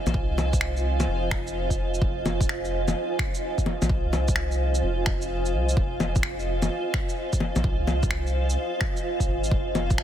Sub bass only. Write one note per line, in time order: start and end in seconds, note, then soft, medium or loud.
0.06 0.27 A#1 medium
0.30 1.07 C2 loud
1.08 1.31 F1 medium
3.82 4.03 A#1 medium
4.05 4.82 C2 loud
4.83 5.55 F1 medium
5.54 5.76 C2 loud
5.77 6.70 F1 loud
7.56 7.77 A#1 medium
7.79 8.57 C2 medium
9.28 9.50 G#1 medium